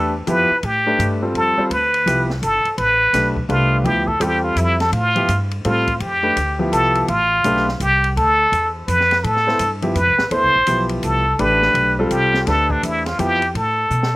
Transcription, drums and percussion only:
0.27 hi-hat pedal, ride
0.63 ride
1.00 hi-hat pedal, ride
1.35 ride
1.71 ride
1.94 ride
2.07 hi-hat pedal, ride
2.30 snare
2.43 hi-hat pedal, ride
2.65 ride
2.78 ride
3.14 snare, hi-hat pedal, ride
3.36 kick
3.50 ride
3.85 ride
4.08 kick
4.21 hi-hat pedal, ride
4.56 hi-hat pedal, ride
4.80 snare, ride
4.93 ride
5.16 ride
5.29 hi-hat pedal, ride
5.51 ride
5.65 ride
5.87 kick, ride
6.00 ride
6.37 hi-hat pedal, ride
6.73 hi-hat pedal, ride
6.95 ride
7.08 ride
7.44 hi-hat pedal, ride
7.56 snare
7.68 snare
7.80 hi-hat pedal, ride
8.04 ride
8.17 ride
8.53 hi-hat pedal, ride
8.88 hi-hat pedal, ride
9.00 snare
9.11 snare, ride
9.24 ride
9.36 snare
9.49 snare
9.59 hi-hat pedal, ride
9.82 ride
9.95 hi-hat pedal, ride
10.18 snare
10.31 ride
10.67 hi-hat pedal, ride
10.89 ride
11.03 hi-hat pedal, ride
11.39 ride
11.62 snare
11.75 ride
12.11 hi-hat pedal, ride
12.34 snare
12.47 snare, ride
12.70 kick
12.83 hi-hat pedal, ride
13.06 snare, ride
13.19 hi-hat pedal, ride
13.42 ride
13.55 ride
13.90 hi-hat pedal
14.03 snare

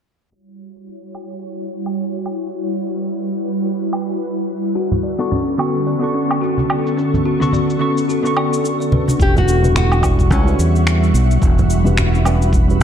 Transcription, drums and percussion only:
0.32 cabasa
0.48 cabasa
0.76 cabasa
0.87 cabasa
1.03 cabasa
1.15 low woodblock
1.31 cabasa
1.43 cabasa
1.59 cabasa
1.86 cabasa, low woodblock
1.99 cabasa
2.15 cabasa
2.26 low woodblock
2.42 cabasa
2.54 cabasa
2.70 cabasa
2.98 cabasa
3.10 cabasa
3.26 cabasa
3.54 cabasa
3.66 cabasa
3.82 cabasa
3.93 low woodblock
4.10 cabasa
4.21 cabasa
4.37 cabasa
4.65 cabasa
4.76 cabasa
4.92 low conga, cabasa
5.20 cabasa
5.32 low conga, cabasa
5.48 cabasa
5.59 low woodblock
5.76 cabasa
5.87 cabasa
6.04 cabasa
6.31 cabasa, low woodblock
6.43 cabasa
6.58 high conga, cabasa
6.70 low woodblock
6.87 cabasa
6.99 cabasa
7.14 low conga, cabasa
7.42 high conga, cabasa
7.52 low conga, cabasa
7.70 cabasa
7.98 cabasa
8.10 cabasa
8.26 cabasa
8.37 low woodblock
8.53 cabasa
8.65 cabasa
8.82 cabasa
8.92 high conga, low conga
9.08 high conga, cabasa
9.20 kick, cabasa
9.36 low conga, cabasa
9.48 cabasa
9.64 high conga, cabasa
9.76 finger snap, low conga, cabasa
9.92 cabasa, low woodblock
10.03 kick, cabasa, low woodblock
10.19 kick, cabasa
10.31 kick, cabasa
10.48 cabasa
10.59 cabasa
10.76 cabasa
10.87 finger snap, cabasa
11.03 cabasa
11.15 cabasa
11.31 cabasa
11.42 kick, cabasa
11.59 low conga, cabasa
11.70 cabasa
11.85 high conga, cabasa
11.97 finger snap, low conga, cabasa
12.14 cabasa
12.25 cabasa, low woodblock
12.42 cabasa
12.53 kick, cabasa
12.70 cabasa

